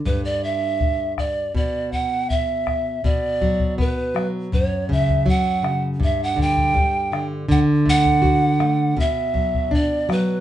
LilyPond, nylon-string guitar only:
\new Staff \with { instrumentName = "Nylon-string guitar" } { \clef bass \time 2/4 \key b \minor \tempo 4 = 81 g,2 | b,2 | b,8 fis8 b8 fis8 | fis,8 cis8 fis8 cis8 |
g,8 d8 g8 d8 | d8 a8 fis'8 a8 | b,8 fis8 d'8 fis8 | }